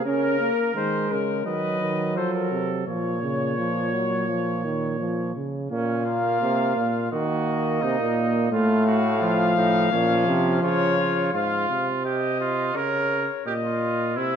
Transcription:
0.05 C#3 C#4 A#4
0.40 A#3
0.75 D#3 G#3 C5
1.11 C#3 A#4
1.46 D#3 F#3 B4 D#5
1.81 D#3
2.16 F3 A4 C5
2.34 A#4
2.51 C3
2.86 A#2 F3 C#5
3.23 C#3
3.58 F3
3.93 F#3
4.29 F3
4.64 D#3
5.00 F3
5.36 C#3
5.71 A#2 A#3 C#4 F5
6.06 F4
6.42 C3
6.76 A#2
7.12 D#3 A#3 F#4 D#5
7.82 C3 D#4
7.99 A#2
8.52 A2 A3 F4 F5
8.87 F#4
9.22 F3 F4
9.57 A2 D#4
9.92 A#2 F3 C#4
10.27 C3
10.62 C#3 F4 C#5
10.98 F4
11.33 G#2 F4 F5
11.69 C3
12.04 G4 D#5
12.40 F4
12.75 C#3 A#4 C#5
13.46 A#2 G4 D#5
13.64 F4
14.16 C3 E4 E5

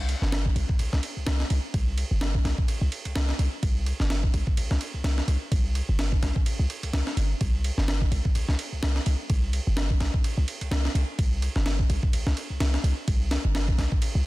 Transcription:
Already playing: C2
0.09 ride
0.22 G1, snare
0.32 snare, ride
0.46 kick
0.56 C2, ride
0.69 kick
0.79 C2, ride
0.93 C2, snare
1.03 ride
1.17 C2
1.26 C2, snare, ride
1.40 snare
1.50 C2, ride
1.74 C2, kick, ride
1.98 ride
2.11 G1
2.21 snare, ride
2.35 kick
2.45 C2, snare, ride
2.58 kick
2.68 ride
2.81 C2
2.92 ride
3.05 C2, ride
3.15 C2, snare, ride
3.29 snare
3.39 C2, ride
3.63 C2, kick, ride
3.86 ride
4.00 G1, snare
4.10 snare, ride
4.23 kick
4.34 C2, ride
4.47 kick
4.57 C2, ride
4.71 C2, snare
4.81 ride
4.94 C2
5.04 C2, snare, ride
5.18 snare
5.28 C2, ride
5.52 C2, kick, ride
5.75 ride
5.89 G1
5.99 snare, ride
6.12 kick
6.23 C2, snare, ride
6.36 kick
6.46 ride
6.59 C2
6.70 ride
6.83 C2, ride
6.93 C2, snare, ride
7.07 snare
7.17 G1, ride
7.41 C2, kick, ride
7.64 ride
7.78 G1, snare
7.88 snare, ride
8.01 kick
8.12 C2, ride
8.25 kick
8.35 C2, ride
8.49 C2, snare
8.59 ride
8.72 C2
8.83 C2, snare, ride
8.96 snare
9.06 C2, ride
9.30 C2, kick, ride
9.53 ride
9.67 G1
9.77 snare, ride
9.90 kick
10.00 C2, snare, ride
10.14 kick
10.24 ride
10.37 C2
10.48 ride
10.61 C2, ride
10.71 C2, snare, ride
10.85 snare
10.95 C2, ride
11.19 C2, kick, ride
11.42 ride
11.56 G1, snare
11.66 snare, ride
11.79 kick
11.90 C2, ride
12.03 kick
12.13 C2, ride
12.27 C2, snare
12.37 ride
12.50 C2
12.60 C2, snare, ride
12.74 snare
12.84 C2, ride
13.08 C2, kick, ride
13.31 snare, ride
13.45 G1
13.55 snare, ride
13.68 kick
13.78 C2, snare, ride
13.92 kick
14.02 ride
14.15 C2

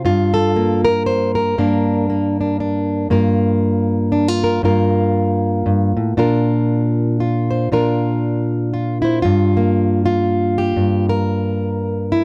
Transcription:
0.05 G2 F4
0.34 A4
0.56 A#3
0.85 A#4
1.06 C5
1.35 A#4
1.58 G2 A#3 D4
2.10 A#3
2.41 D4
2.60 D4
3.10 G2 A#3 F4 A#4
4.12 D4
4.28 F4
4.44 A#4
4.63 G2 A#3 F4 A#4
5.66 G2
5.97 A2
6.17 A#2 D4 F4 A#4
7.20 F4
7.51 C5
7.72 A#2 D4 F4 A#4
8.74 F4
9.02 E4 C5
9.22 G2 F4
9.57 A#3
10.06 F4
10.58 G4
10.76 G2
11.09 A#4
12.12 E4

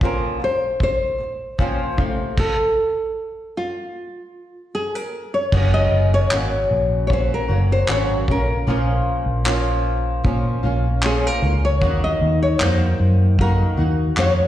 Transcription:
0.01 A#2 F3 C4 C#4 F4 A#4, kick
0.40 A#2 F3
0.44 C5
0.79 A#2 F3 C5, kick
1.18 A#2 F3
1.58 A#2 F3 C4 C#4 F4, kick
1.98 F2 C3 F3 A3 C4 F4, kick
2.37 A4, kick, crash
3.57 F4
4.75 G#4
4.95 A#4
5.34 C#5
5.52 F#1 F#2 C#3 F#3 A#3 C#4 F#4, kick, crash
5.74 D#5
5.92 F#1
6.14 C#5
6.31 G#1 F#2 C#3 F#3 A#3 C#4 F#4, clap
6.71 A#1
7.07 F#3 A#3 C#4 C#5, kick
7.12 F#4 C5
7.34 A#4
7.48 F#1 F#3 A#3 C#4 F#4
7.72 C5
7.88 G#1 F#2 C#3 F#3 A#3 C#4 F#4 C#5, clap
8.28 A#1 A#3 C#4 F4 A#4, kick
8.67 A#1 A#2 F3 A#3 C#4 F4
9.26 A#1
9.44 A#2 F3 A#3 C#4 F4, clap
10.24 A#2 F3 A#3 C#4 F4, kick
10.63 A#1 A#3 C#4 F4
11.02 A#2 F3 A#3 C#4 F4 G#4, clap
11.27 A#4
11.42 C#2 A#3 C#4 F4
11.65 C#5
11.81 D#2 D#3 A#3 D#4 F#4, kick
12.04 D#5
12.21 D#2
12.43 C#5
12.60 F2 D#3 A#3 D#4 F#4 C5, clap
13.00 F#2
13.38 D#3 A#3 D#4 F#4 A#4, kick
13.77 D#2 A#3 D#4 F#4
14.17 F2 D#3 A#3 D#4 F#4 C#5, clap

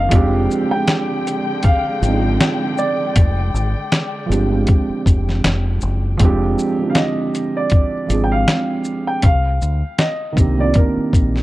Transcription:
Already playing: D3 D#3 A#3 C4 D4 G4 F5
0.09 F1 D3 F3 G#3 C4 G5, kick, closed hi-hat
0.14 D4 G4
0.51 shaker
0.68 F3 G#3 C4 G5
0.73 D4 G#4
0.87 snare, closed hi-hat
1.27 closed hi-hat, shaker
1.63 F5, kick, closed hi-hat
2.01 G#1 F3 G#3 C4, closed hi-hat, shaker
2.06 D4 D#4
2.15 F4
2.41 snare, closed hi-hat
2.78 D5, shaker
3.16 F1, kick, closed hi-hat
3.54 G#1, shaker
3.92 snare, closed hi-hat
4.26 G1 F3 G#3 C4
4.31 D4 G4, closed hi-hat, shaker
4.47 F3 G#3 C4
4.52 D4 F4
4.67 kick, closed hi-hat
4.90 muted fingered electric bass stroke
5.06 F1, kick, closed hi-hat, shaker
5.29 snare
5.44 F1, snare, closed hi-hat
5.81 F#1, shaker
6.17 F1 F3 G#3 C4, kick, closed hi-hat
6.23 D4 G4
6.59 shaker
6.78 F3 G#3 C4
6.83 D3 E4
6.90 F4 F5
6.95 D#5, snare, closed hi-hat
7.35 closed hi-hat, shaker
7.57 D5
7.70 kick, closed hi-hat
8.06 G#1 F3 G#3 C4, closed hi-hat, shaker
8.12 D4 G#4
8.24 G5
8.32 F5
8.48 snare, closed hi-hat
8.84 shaker
9.07 G5
9.22 C2 F5, kick, closed hi-hat
9.62 D2, shaker
9.98 D#5, snare, closed hi-hat
10.32 D#3 A#3 C4
10.37 C2 D4 G4, kick, closed hi-hat, shaker
10.56 D#3 A#3 C4
10.60 D4 F4 D5
10.74 A#4, kick, closed hi-hat
10.97 muted fingered electric bass stroke
11.13 A#1, kick, closed hi-hat, shaker
11.36 snare

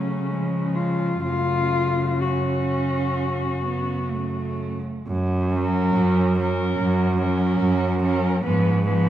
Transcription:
Already playing: C#3 F#3 A3 C#4
0.30 F3 G#3
0.75 F4
1.23 F#2 C#3 A3 F4
2.21 C#4 F#4
3.64 B3
4.11 A3
5.07 F#2
5.51 F#3 C#4 A#4
5.96 F#2
6.38 F#3 C#4 A#4
6.80 F#2
7.20 F#3 C#4 A#4
7.61 F#2
8.01 F#3 C#4 A#4
8.44 G#2 F3 B3 B4
8.87 F3 B3 B4

